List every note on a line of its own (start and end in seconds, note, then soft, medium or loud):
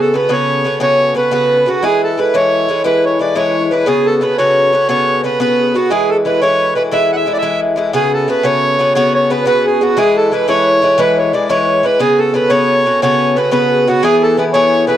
0.00 0.12 C#3 medium
0.00 0.14 B3 medium
0.00 0.14 F#4 medium
0.00 0.17 A4 medium
0.00 1.90 A4 medium
0.00 0.16 A4 medium
0.00 0.15 B4 medium
0.00 0.15 B4 loud
0.00 0.37 D5 medium
0.00 1.08 E5 medium
0.14 0.28 C#3 medium
0.14 0.28 B3 medium
0.14 0.28 F#4 medium
0.14 0.32 B4 medium
0.14 1.17 B4 medium
0.14 0.29 B4 medium
0.14 0.32 B4 medium
0.29 0.63 C#3 medium
0.29 0.65 B3 medium
0.29 0.65 F#4 medium
0.29 0.66 B4 medium
0.29 0.81 C#5 medium
0.29 0.79 C#5 loud
0.64 0.79 C#3 medium
0.64 0.79 B3 medium
0.64 0.79 F#4 medium
0.64 0.80 B4 medium
0.80 1.13 C#3 medium
0.80 1.15 B3 medium
0.80 1.15 F#4 medium
0.80 1.16 B4 loud
0.80 1.00 C#5 medium
0.80 1.18 C#5 medium
0.80 1.14 C#5 loud
1.00 2.35 C#5 medium
1.15 1.30 C#3 medium
1.15 1.30 B3 medium
1.15 1.31 F#4 medium
1.15 1.31 B4 medium
1.15 1.32 B4 medium
1.31 1.65 C#3 medium
1.31 1.67 B3 medium
1.31 1.67 F#4 loud
1.31 1.68 B4 medium
1.31 1.45 B4 medium
1.31 1.69 B4 loud
1.45 1.57 B4 medium
1.57 2.19 B4 medium
1.66 1.82 C#3 medium
1.66 1.82 B3 medium
1.66 1.83 F#4 medium
1.66 1.84 F#4 medium
1.66 1.83 F#4 medium
1.66 4.93 F#4 medium
1.66 1.82 B4 medium
1.82 2.16 E3 medium
1.82 2.17 G#3 medium
1.82 2.18 E4 medium
1.82 2.04 G#4 medium
1.82 2.09 G#4 medium
1.82 2.02 G#4 loud
1.82 2.19 B4 loud
2.02 2.36 A4 medium
2.02 3.94 A4 medium
2.02 2.20 A4 medium
2.17 2.33 E3 medium
2.17 2.33 G#3 medium
2.17 2.34 E4 medium
2.17 2.34 B4 medium
2.17 2.36 B4 medium
2.17 2.86 B4 medium
2.34 2.67 E3 medium
2.34 2.68 G#3 medium
2.34 2.69 E4 loud
2.34 2.70 B4 medium
2.34 2.86 C#5 medium
2.34 3.05 C#5 medium
2.34 2.83 C#5 loud
2.68 2.83 E3 medium
2.68 2.83 G#3 medium
2.68 2.84 E4 medium
2.68 2.85 B4 medium
2.84 3.18 E3 medium
2.84 3.19 G#3 medium
2.84 3.20 E4 medium
2.84 3.06 B4 medium
2.84 3.05 B4 loud
2.84 3.21 B4 medium
2.84 3.71 B4 medium
3.04 3.20 C#5 medium
3.04 3.27 C#5 medium
3.04 3.20 C#5 medium
3.19 3.34 E3 soft
3.19 3.35 G#3 medium
3.19 3.35 E4 medium
3.19 3.36 B4 medium
3.19 3.38 D5 medium
3.19 3.42 D5 medium
3.19 3.35 D5 medium
3.35 3.70 E3 medium
3.35 3.71 G#3 medium
3.35 3.71 E4 medium
3.35 3.73 B4 medium
3.35 3.73 C#5 medium
3.35 3.49 C#5 medium
3.35 3.72 C#5 loud
3.49 3.60 C#5 medium
3.61 4.38 C#5 medium
3.71 3.86 E3 medium
3.71 3.86 G#3 medium
3.71 3.87 E4 medium
3.71 3.87 B4 medium
3.71 3.88 B4 medium
3.71 4.22 B4 medium
3.71 3.86 B4 medium
3.86 4.20 C#3 medium
3.86 4.22 B3 loud
3.86 4.21 F#4 medium
3.86 4.37 G#4 medium
3.86 4.07 G#4 loud
3.86 4.13 G#4 medium
3.86 4.23 B4 medium
4.06 4.23 A4 medium
4.06 5.97 A4 medium
4.21 4.37 C#3 medium
4.21 4.38 B3 medium
4.21 4.38 F#4 medium
4.21 4.37 B4 medium
4.21 5.24 B4 medium
4.21 4.38 B4 medium
4.37 4.71 C#3 medium
4.37 4.73 B3 medium
4.37 4.73 F#4 medium
4.37 4.74 B4 medium
4.37 4.85 C#5 medium
4.37 4.88 C#5 loud
4.72 4.87 C#3 medium
4.72 4.88 B3 medium
4.72 4.88 F#4 medium
4.72 4.89 B4 medium
4.72 4.95 D5 medium
4.89 5.22 C#3 loud
4.89 5.24 B3 medium
4.89 5.24 F#4 medium
4.89 5.25 B4 medium
4.89 5.25 C#5 medium
4.89 5.22 C#5 loud
5.24 5.39 C#3 medium
5.24 5.39 B3 medium
5.24 5.39 F#4 medium
5.24 5.39 B4 medium
5.24 5.40 B4 medium
5.39 5.73 C#3 medium
5.39 5.75 B3 medium
5.39 5.75 F#4 medium
5.39 5.57 B4 medium
5.39 6.25 B4 medium
5.39 5.76 B4 loud
5.58 5.76 G#4 medium
5.74 5.90 C#3 medium
5.74 5.90 B3 medium
5.74 5.92 F#4 medium
5.74 5.91 F#4 medium
5.74 9.00 F#4 medium
5.74 5.91 F#4 medium
5.74 5.91 B4 medium
5.90 6.24 E3 medium
5.90 6.24 G#3 loud
5.90 6.26 E4 loud
5.90 6.19 G#4 medium
5.90 6.10 G#4 loud
5.90 6.15 G#4 medium
5.90 6.27 B4 loud
6.09 7.99 A4 medium
6.09 6.17 A4 medium
6.25 6.40 E3 medium
6.25 6.41 G#3 medium
6.25 6.42 E4 medium
6.25 6.77 B4 medium
6.25 6.41 B4 medium
6.25 6.42 B4 medium
6.41 6.74 E3 medium
6.41 6.75 G#3 medium
6.41 6.76 E4 medium
6.41 6.77 B4 medium
6.41 8.44 C#5 medium
6.41 6.74 C#5 loud
6.41 6.78 C#5 medium
6.75 6.90 E3 medium
6.75 6.91 G#3 medium
6.75 6.91 E4 medium
6.75 6.83 B4 loud
6.75 6.91 B4 medium
6.75 8.28 B4 medium
6.75 6.92 B4 medium
6.91 7.25 E3 medium
6.91 7.26 G#3 medium
6.91 7.26 E4 medium
6.91 7.27 B4 loud
6.91 7.15 E5 medium
6.91 7.11 E5 loud
7.12 7.37 E5 medium
7.12 7.36 E5 medium
7.12 7.16 F#5 medium
7.16 7.33 E5 loud
7.26 7.41 E3 medium
7.26 7.41 G#3 medium
7.26 7.42 E4 medium
7.26 7.42 B4 medium
7.33 7.38 D5 medium
7.33 7.60 E5 medium
7.37 9.67 E5 medium
7.37 7.60 E5 loud
7.42 7.75 E3 medium
7.42 7.76 G#3 medium
7.42 7.76 E4 medium
7.42 7.78 B4 medium
7.76 7.93 E3 medium
7.76 7.93 G#3 medium
7.76 7.94 E4 medium
7.76 7.93 B4 medium
7.93 8.27 C#3 medium
7.93 8.28 B3 loud
7.93 8.28 F#4 medium
7.93 8.18 G#4 medium
7.93 8.14 G#4 medium
7.93 8.12 G#4 loud
7.93 8.29 B4 loud
8.12 9.71 A4 medium
8.12 8.28 A4 medium
8.28 8.42 C#3 medium
8.28 8.43 B3 medium
8.28 8.43 F#4 medium
8.28 9.30 B4 medium
8.28 8.44 B4 medium
8.28 8.46 B4 medium
8.43 8.78 C#3 medium
8.43 8.79 B3 medium
8.43 8.79 F#4 medium
8.43 8.80 B4 loud
8.43 8.95 C#5 medium
8.43 8.93 C#5 loud
8.43 8.92 C#5 medium
8.79 8.94 C#3 medium
8.79 8.95 B3 medium
8.79 8.95 F#4 medium
8.79 8.96 B4 medium
8.95 9.29 C#3 medium
8.95 9.30 B3 medium
8.95 9.30 F#4 loud
8.95 9.32 B4 loud
8.95 9.13 C#5 loud
8.95 9.14 C#5 medium
8.95 9.13 C#5 medium
9.14 9.33 C#5 medium
9.14 10.47 C#5 medium
9.14 9.31 C#5 medium
9.30 9.44 C#3 medium
9.30 9.46 B3 medium
9.30 9.46 F#4 medium
9.30 9.45 B4 medium
9.30 9.46 B4 medium
9.30 9.42 B4 medium
9.30 9.46 B4 medium
9.43 9.80 C#3 medium
9.43 9.81 B3 medium
9.43 9.81 F#4 medium
9.43 9.64 B4 medium
9.43 10.32 B4 medium
9.43 9.66 B4 loud
9.43 9.48 C#5 medium
9.47 9.83 B4 medium
9.65 9.80 G#4 medium
9.65 9.96 G#4 medium
9.65 9.82 G#4 medium
9.80 9.96 C#3 medium
9.80 9.97 B3 medium
9.80 13.05 F#4 medium
9.80 9.98 F#4 medium
9.80 9.97 F#4 medium
9.80 9.97 B4 medium
9.97 10.30 E3 medium
9.97 10.32 G#3 medium
9.97 10.32 E4 loud
9.97 10.22 G#4 medium
9.97 10.17 G#4 loud
9.97 10.18 G#4 medium
9.97 10.34 B4 loud
10.16 12.06 A4 medium
10.16 10.31 A4 medium
10.16 10.33 A4 medium
10.32 10.46 E3 medium
10.32 10.47 G#3 medium
10.32 10.47 E4 medium
10.32 10.50 B4 medium
10.32 10.99 B4 medium
10.32 10.47 B4 medium
10.32 10.48 B4 medium
10.48 10.81 E3 medium
10.48 10.81 G#3 medium
10.48 10.82 E4 medium
10.48 10.84 B4 medium
10.48 10.83 C#5 medium
10.48 11.01 C#5 loud
10.82 10.97 E3 medium
10.82 10.97 G#3 medium
10.82 10.98 E4 medium
10.82 10.98 B4 medium
10.82 11.17 C#5 medium
10.82 11.01 C#5 medium
10.98 11.32 E3 loud
10.98 11.33 G#3 loud
10.98 11.33 E4 medium
10.98 11.18 B4 loud
10.98 11.19 B4 medium
10.98 11.83 B4 medium
10.98 11.35 B4 loud
11.18 11.35 C#5 medium
11.18 11.39 C#5 medium
11.18 11.33 C#5 medium
11.33 11.48 E3 medium
11.33 11.49 G#3 medium
11.33 11.49 E4 medium
11.33 11.49 B4 medium
11.33 11.55 D5 medium
11.33 11.49 D5 medium
11.49 11.82 E3 medium
11.49 11.83 G#3 loud
11.49 11.84 E4 medium
11.49 11.85 B4 medium
11.49 11.67 C#5 medium
11.49 11.86 C#5 medium
11.49 11.85 C#5 loud
11.67 12.52 C#5 medium
11.83 11.99 E3 medium
11.83 12.00 G#3 medium
11.83 12.00 E4 medium
11.83 12.35 B4 medium
11.83 12.02 B4 medium
11.83 12.01 B4 medium
11.83 12.00 B4 medium
11.99 12.33 C#3 medium
11.99 12.34 B3 medium
11.99 12.34 F#4 loud
11.99 12.19 G#4 loud
11.99 12.25 G#4 medium
11.99 12.20 G#4 medium
11.99 12.36 B4 medium
12.19 12.52 A4 medium
12.19 12.34 A4 medium
12.19 14.10 A4 medium
12.34 12.49 C#3 medium
12.34 12.49 B3 medium
12.34 12.50 F#4 medium
12.34 12.51 B4 medium
12.34 13.36 B4 medium
12.34 12.50 B4 medium
12.50 12.84 C#3 medium
12.50 12.86 B3 medium
12.50 12.85 F#4 medium
12.50 12.87 B4 medium
12.50 13.01 C#5 loud
12.50 12.79 C#5 medium
12.50 13.02 C#5 medium
12.86 13.01 C#3 soft
12.86 13.02 B3 medium
12.86 13.02 F#4 medium
12.86 13.02 B4 medium
13.01 13.35 C#3 medium
13.01 13.36 B3 loud
13.01 13.37 F#4 medium
13.01 13.38 B4 loud
13.01 13.54 C#5 medium
13.01 13.37 C#5 loud
13.01 14.55 C#5 medium
13.36 13.50 C#3 medium
13.36 13.51 B3 medium
13.36 13.51 F#4 medium
13.36 13.53 B4 medium
13.36 13.51 B4 medium
13.36 13.52 B4 medium
13.51 13.86 C#3 medium
13.51 13.88 B3 medium
13.51 13.87 F#4 medium
13.51 13.70 B4 medium
13.51 13.88 B4 loud
13.51 13.89 B4 medium
13.51 14.38 B4 medium
13.71 13.88 G#4 medium
13.86 14.02 C#3 medium
13.86 14.02 B3 medium
13.86 14.05 F#4 medium
13.86 14.97 F#4 medium
13.86 14.04 F#4 loud
13.86 14.04 F#4 medium
13.86 14.04 B4 medium
14.03 14.37 E3 medium
14.03 14.38 B3 loud
14.03 14.38 E4 medium
14.03 14.24 G#4 medium
14.03 14.22 G#4 loud
14.03 14.28 G#4 medium
14.03 14.39 G#4 loud
14.22 14.38 A4 medium
14.22 14.97 A4 medium
14.22 14.37 A4 loud
14.37 14.53 E3 medium
14.37 14.53 B3 medium
14.37 14.53 E4 medium
14.37 14.54 G#4 medium
14.37 14.45 B4 medium
14.37 14.88 B4 medium
14.53 14.87 E3 medium
14.53 14.88 B3 medium
14.53 14.88 E4 medium
14.53 14.89 G#4 medium
14.53 14.85 C#5 loud
14.53 14.89 C#5 loud
14.87 14.97 E3 medium
14.87 14.97 B3 medium
14.87 14.97 E4 medium
14.87 14.97 G#4 medium
14.87 14.97 B4 medium